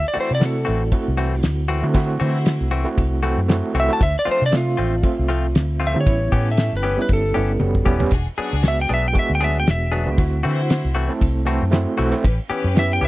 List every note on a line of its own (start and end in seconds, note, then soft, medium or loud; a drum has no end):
0.08 0.17 D5 medium
0.13 0.32 E3 medium
0.13 0.31 A3 medium
0.13 0.31 C4 medium
0.13 0.66 E4 medium
0.13 0.31 F#4 medium
0.13 0.66 F#4 medium
0.13 0.66 D5 medium
0.13 muted fingered electric bass stroke soft
0.13 ride medium
0.21 0.32 C5 medium
0.31 0.64 C3 medium
0.31 0.43 D5 medium
0.40 0.89 A3 medium
0.40 0.89 C4 medium
0.40 0.89 E4 medium
0.40 0.90 F#4 medium
0.40 snare loud
0.40 ride medium
0.46 1.43 A4 medium
0.65 0.91 A1 medium
0.65 0.83 E3 medium
0.65 0.83 A3 medium
0.65 0.82 C4 medium
0.65 0.82 F#4 medium
0.65 ride medium
0.92 1.77 A3 medium
0.92 1.77 C4 medium
0.92 1.78 E4 medium
0.92 1.78 F#4 loud
0.92 kick medium
0.92 ride medium
1.08 1.41 C2 medium
1.17 1.35 E3 medium
1.17 1.35 A3 medium
1.17 1.34 C4 medium
1.17 1.34 F#4 medium
1.17 ride medium
1.43 1.84 D2 medium
1.43 snare loud
1.43 ride medium
1.68 1.86 E3 medium
1.68 1.86 A3 medium
1.68 1.86 C4 medium
1.68 1.85 F#4 medium
1.68 ride medium
1.82 2.17 D3 medium
1.82 1.93 A3 loud
1.82 1.93 C4 medium
1.82 1.94 E4 medium
1.82 1.94 F#4 loud
1.94 2.80 A3 medium
1.94 2.80 C4 medium
1.94 2.09 E4 medium
1.94 2.80 E4 medium
1.94 2.09 F#4 medium
1.94 2.81 F#4 medium
1.94 2.09 C5 medium
1.94 kick loud
1.94 ride medium
2.19 2.57 D3 medium
2.19 2.38 E3 medium
2.19 2.37 A3 medium
2.19 2.37 C4 medium
2.19 2.71 E4 medium
2.19 2.72 F#4 medium
2.19 2.37 F#4 medium
2.19 2.72 C5 loud
2.19 ride medium
2.46 snare loud
2.46 ride medium
2.61 2.84 C2 medium
2.71 2.89 E3 medium
2.71 2.89 A3 medium
2.71 2.88 C4 medium
2.71 2.88 F#4 medium
2.71 ride medium
2.84 3.20 A3 loud
2.84 3.21 C4 medium
2.84 3.21 E4 medium
2.84 3.21 F#4 loud
2.98 3.34 C2 loud
2.98 kick medium
2.98 ride medium
3.23 3.40 E3 medium
3.23 3.47 A3 medium
3.23 3.40 A3 medium
3.23 3.47 C4 medium
3.23 3.40 C4 medium
3.23 3.48 E4 medium
3.23 3.40 F#4 medium
3.23 3.48 F#4 medium
3.23 ride medium
3.37 3.61 F#2 medium
3.48 3.72 A3 medium
3.48 3.73 C4 medium
3.48 3.74 E4 medium
3.48 3.74 F#4 medium
3.48 snare loud
3.48 ride medium
3.74 3.88 C2 medium
3.74 3.92 E3 medium
3.74 3.87 A3 medium
3.74 3.92 A3 medium
3.74 3.87 C4 medium
3.74 3.92 C4 medium
3.74 3.88 E4 medium
3.74 3.88 F#4 medium
3.74 3.91 F#4 medium
3.74 ride medium
3.80 3.91 E5 loud
3.88 4.00 A3 medium
3.88 4.00 C4 medium
3.88 4.01 E4 medium
3.88 4.01 F#4 medium
3.93 4.02 A5 medium
3.99 4.14 D2 loud
3.99 4.14 D4 medium
3.99 4.15 F4 medium
3.99 4.15 C5 medium
3.99 4.16 E5 medium
3.99 kick loud
3.99 ride medium
4.19 4.28 D5 medium
4.25 4.43 F3 medium
4.25 4.43 A3 medium
4.25 4.43 C4 medium
4.25 4.77 D4 medium
4.25 4.42 F4 medium
4.25 4.77 C5 medium
4.25 muted fingered electric bass stroke soft
4.25 ride medium
4.31 4.43 C5 medium
4.42 4.75 C3 medium
4.46 4.54 D5 loud
4.51 5.00 A3 medium
4.51 5.01 C4 medium
4.51 5.01 F4 medium
4.51 5.01 E5 medium
4.51 snare loud
4.51 ride medium
4.57 5.54 F4 loud
4.77 5.02 A1 medium
4.77 4.95 F3 medium
4.77 4.95 A3 medium
4.77 4.95 C4 medium
4.77 4.94 F4 medium
4.77 ride medium
5.03 5.89 A3 medium
5.03 5.89 C4 medium
5.03 5.89 F4 medium
5.03 5.89 E5 medium
5.03 kick medium
5.03 ride medium
5.19 5.52 C2 medium
5.29 5.46 F3 medium
5.29 5.46 A3 medium
5.29 5.46 C4 medium
5.29 5.45 F4 medium
5.29 ride medium
5.55 5.96 D2 medium
5.55 snare loud
5.55 ride medium
5.80 5.98 F3 medium
5.80 5.97 A3 medium
5.80 5.97 C4 medium
5.80 5.97 F4 medium
5.80 ride medium
5.87 5.98 E5 medium
5.94 6.06 D3 medium
5.94 6.05 A3 medium
5.94 6.05 C4 medium
5.94 6.06 E4 medium
5.94 6.06 G4 medium
6.01 6.48 C#5 loud
6.05 6.30 A1 loud
6.05 6.91 G3 medium
6.05 6.92 B3 medium
6.05 6.92 C#4 medium
6.05 6.21 C#4 medium
6.05 6.92 E4 medium
6.05 6.21 G4 medium
6.05 6.21 B4 medium
6.05 kick loud
6.05 ride medium
6.32 6.69 A2 medium
6.32 6.50 E3 medium
6.32 6.49 B3 medium
6.32 6.49 C#4 medium
6.32 6.84 C#4 medium
6.32 6.49 G4 medium
6.32 6.84 G4 medium
6.32 6.84 A4 medium
6.32 kick medium
6.32 ride medium
6.51 6.74 E5 medium
6.57 snare loud
6.57 ride medium
6.73 6.96 G1 medium
6.73 6.99 B4 medium
6.83 7.01 E3 medium
6.83 7.01 B3 medium
6.83 7.00 C#4 medium
6.83 7.00 G4 medium
6.83 ride medium
6.97 7.32 G3 medium
6.97 7.33 B3 medium
6.97 7.33 C#4 medium
6.97 7.33 E4 medium
7.02 7.11 B4 medium
7.09 7.33 G1 loud
7.09 kick medium
7.09 ride medium
7.13 8.11 A4 loud
7.34 7.59 G1 medium
7.34 7.52 E3 medium
7.34 7.58 G3 medium
7.34 7.59 B3 medium
7.34 7.52 B3 medium
7.34 7.51 C#4 medium
7.34 7.59 C#4 medium
7.34 7.60 E4 medium
7.34 7.51 G4 medium
7.34 ride medium
7.59 7.84 F#1 medium
7.59 7.84 G3 medium
7.59 7.84 B3 medium
7.59 7.85 C#4 medium
7.59 7.85 F#4 medium
7.59 high tom medium
7.75 kick medium
7.85 8.09 E1 medium
7.85 8.03 E3 medium
7.85 7.98 G3 medium
7.85 7.98 B3 medium
7.85 8.03 B3 medium
7.85 7.98 C#4 medium
7.85 8.03 C#4 medium
7.85 8.00 E4 loud
7.85 8.03 G4 medium
7.85 kick medium
7.99 8.11 G3 medium
7.99 8.11 B3 medium
7.99 8.12 C#4 medium
7.99 8.12 G4 loud
7.99 floor tom loud
8.11 8.25 E1 loud
8.11 8.26 D4 medium
8.11 8.27 F#4 medium
8.11 8.27 G#4 loud
8.11 kick loud
8.11 ride medium
8.37 8.55 F#3 medium
8.37 8.55 B3 medium
8.37 8.90 D4 loud
8.37 8.55 D4 medium
8.37 8.90 F#4 medium
8.37 8.54 G#4 medium
8.37 8.90 G#4 loud
8.37 muted fingered electric bass stroke soft
8.37 ride medium
8.53 8.86 C#2 medium
8.63 9.12 G#3 medium
8.63 9.12 B3 medium
8.63 9.12 D4 medium
8.63 9.13 F#4 medium
8.63 snare loud
8.63 ride medium
8.68 8.80 E5 medium
8.81 8.91 G5 medium
8.89 9.13 B1 medium
8.89 9.07 F#3 medium
8.89 9.07 B3 medium
8.89 9.06 D4 medium
8.89 9.06 G#4 medium
8.89 ride medium
8.94 9.06 E5 loud
9.08 9.17 G5 medium
9.13 10.00 G#3 medium
9.13 10.00 B3 medium
9.13 10.00 D4 medium
9.13 10.00 F#4 loud
9.13 kick medium
9.13 ride medium
9.19 9.31 E5 medium
9.30 9.63 D2 medium
9.35 9.43 G5 medium
9.41 9.58 F#3 medium
9.41 9.58 B3 medium
9.41 9.58 D4 medium
9.41 9.57 G#4 medium
9.41 9.56 E5 medium
9.41 ride medium
9.60 9.69 G5 medium
9.67 10.08 E1 loud
9.67 11.19 E5 loud
9.67 snare loud
9.67 ride medium
9.92 10.10 F#3 medium
9.92 10.09 B3 medium
9.92 10.09 D4 medium
9.92 10.09 G#4 medium
9.92 ride medium
10.06 10.18 C#2 medium
10.06 10.17 G#3 medium
10.06 10.17 B3 medium
10.06 10.17 D4 medium
10.06 10.17 F#4 medium
10.17 10.42 D2 loud
10.17 11.03 A3 medium
10.17 11.04 C4 medium
10.17 10.32 E4 medium
10.17 11.04 E4 medium
10.17 10.32 F#4 medium
10.17 11.04 F#4 medium
10.17 10.33 C5 medium
10.17 kick loud
10.17 ride medium
10.43 10.81 D3 loud
10.43 10.61 E3 medium
10.43 10.61 A3 medium
10.43 10.61 C4 medium
10.43 10.95 E4 loud
10.43 10.95 F#4 medium
10.43 10.60 F#4 medium
10.43 10.95 C5 loud
10.43 ride medium
10.70 snare loud
10.70 ride medium
10.85 11.08 C2 medium
10.95 11.12 E3 medium
10.95 11.12 A3 medium
10.95 11.12 C4 medium
10.95 11.12 F#4 medium
10.95 ride medium
11.09 11.44 A3 loud
11.09 11.44 C4 medium
11.09 11.45 E4 medium
11.09 11.45 A4 loud
11.21 11.58 C2 loud
11.21 kick medium
11.21 ride medium
11.45 11.64 E3 medium
11.45 11.70 A3 medium
11.45 11.64 A3 medium
11.45 11.70 C4 medium
11.45 11.64 C4 medium
11.45 11.71 E4 medium
11.45 11.63 F#4 medium
11.45 11.71 A4 loud
11.45 ride medium
11.62 11.85 F#2 medium
11.71 11.96 A3 medium
11.71 11.96 C4 medium
11.71 11.97 E4 medium
11.71 11.97 F#4 loud
11.71 snare loud
11.71 ride medium
11.97 12.12 B1 medium
11.97 12.15 E3 medium
11.97 12.10 A3 medium
11.97 12.15 A3 medium
11.97 12.10 C4 medium
11.97 12.15 C4 medium
11.97 12.12 E4 medium
11.97 12.15 F#4 medium
11.97 12.12 F#4 loud
11.97 ride medium
12.11 12.23 A3 medium
12.11 12.23 C4 medium
12.11 12.24 E4 medium
12.11 12.24 A4 loud
12.24 12.38 A1 loud
12.24 12.38 C#4 medium
12.24 12.38 G4 medium
12.24 12.39 B4 loud
12.24 kick loud
12.24 ride medium
12.49 12.67 E3 medium
12.49 12.67 B3 medium
12.49 13.01 C#4 loud
12.49 12.67 C#4 medium
12.49 12.66 G4 medium
12.49 13.01 G4 loud
12.49 13.01 B4 loud
12.49 muted fingered electric bass stroke soft
12.49 ride medium
12.64 12.98 F#2 medium
12.74 13.08 B3 medium
12.74 13.08 C#4 medium
12.74 13.08 E4 medium
12.74 13.08 G4 loud
12.74 snare loud
12.74 ride medium
12.79 12.91 E5 medium
12.93 13.03 G5 medium
13.01 13.08 C#2 loud
13.01 13.08 E3 medium
13.01 13.08 B3 medium
13.01 13.08 C#4 medium
13.01 13.08 G4 medium
13.01 13.08 E5 medium
13.01 ride medium